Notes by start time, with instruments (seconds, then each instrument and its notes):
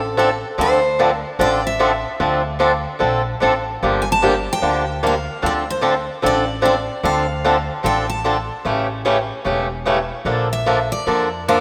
Already playing: upright bass A1, steel-string acoustic guitar A4
0.17 steel-string acoustic guitar D3 F3 C4 D4 A4
0.58 upright bass D2, steel-string acoustic guitar D3 F3 C4 D4 A4 C5
0.99 steel-string acoustic guitar D3 F3 C4 D4 A4
1.07 steel-string acoustic guitar A#4
1.39 upright bass A1, steel-string acoustic guitar D3 F3 C4 D4 A4 D5
1.67 steel-string acoustic guitar E5
1.79 steel-string acoustic guitar D3 F3 C4 D4 A4
2.20 upright bass D2, steel-string acoustic guitar D3 F3 C4 D4 A4
2.59 steel-string acoustic guitar D3 F3 C4 D4 A4
2.99 upright bass A#1, steel-string acoustic guitar D3 F3 C4 D4 A4
3.40 upright bass A1, steel-string acoustic guitar D3 F3 C4 D4 A4
3.83 upright bass G1, steel-string acoustic guitar D3 F3 A#3 D4 G4
4.02 steel-string acoustic guitar G#5
4.12 steel-string acoustic guitar A5
4.22 steel-string acoustic guitar D3 F3 A#3 D4 G4
4.53 steel-string acoustic guitar G5
4.62 upright bass D2, steel-string acoustic guitar D3 F3 A#3 D4 G4
5.03 steel-string acoustic guitar D3 F3 A#3 D4 G4 F5
5.42 upright bass D2, steel-string acoustic guitar D3 F3 C4 D4 A4
5.46 steel-string acoustic guitar D5
5.70 steel-string acoustic guitar C5
5.81 steel-string acoustic guitar D3 F3 C4 D4 A4
6.22 upright bass A1, steel-string acoustic guitar D3 F3 C4 D4 A4
6.26 steel-string acoustic guitar D5
6.62 steel-string acoustic guitar D3 F3 C4 D4 A4 D5
7.03 upright bass D2, steel-string acoustic guitar D3 F3 C4 D4 A4 F5
7.44 steel-string acoustic guitar D3 F3 C4 D4 A4
7.83 upright bass A1, steel-string acoustic guitar D3 F3 C4 D4 A4 G5
8.10 steel-string acoustic guitar A5
8.24 steel-string acoustic guitar D3 F3 C4 D4 A4
8.65 upright bass A1, steel-string acoustic guitar C#3 E3 A3 C#4 G4
9.05 steel-string acoustic guitar C#3 E3 A3 C#4 G4
9.45 upright bass E1, steel-string acoustic guitar C#3 E3 A3 C#4 G4
9.86 steel-string acoustic guitar C#3 E3 A3 C#4 G4
10.25 upright bass A#1, steel-string acoustic guitar D3 F3 A#3 D4 A4
10.53 steel-string acoustic guitar E5
10.66 steel-string acoustic guitar D3 F3 A#3 D4 A4
10.92 steel-string acoustic guitar D5
11.06 upright bass F2, steel-string acoustic guitar D3 F3 A#3 D4 A4
11.48 steel-string acoustic guitar D3 F3 A#3 D4 A4 C5